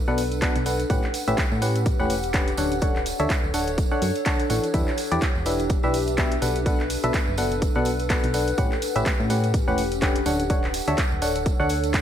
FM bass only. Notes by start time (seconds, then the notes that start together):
0.08 B1
0.56 B1
0.90 A1
1.28 A1
1.52 A2
2.00 E1
2.58 D1
3.20 D2
3.44 D1
4.02 F#2
4.50 A1
4.74 E2
5.12 E2
5.36 E1
5.84 B1
6.42 B1
7.04 B1
7.28 F#1
7.76 B1
8.24 B1
8.58 A1
8.96 A1
9.20 A2
9.68 E1
10.26 D1
10.88 D2
11.12 D1
11.60 D2